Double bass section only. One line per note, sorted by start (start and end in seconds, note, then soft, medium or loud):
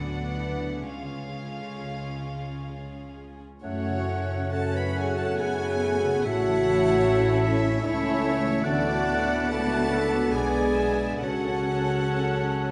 0.00 0.81 D2 soft
0.82 3.41 C#2 soft
3.62 6.20 F#2 medium
6.24 7.85 A1 medium
7.85 8.62 C#2 medium
8.63 9.51 D2 medium
9.52 10.34 C#2 medium
10.34 11.22 B1 medium
11.22 12.71 C#2 medium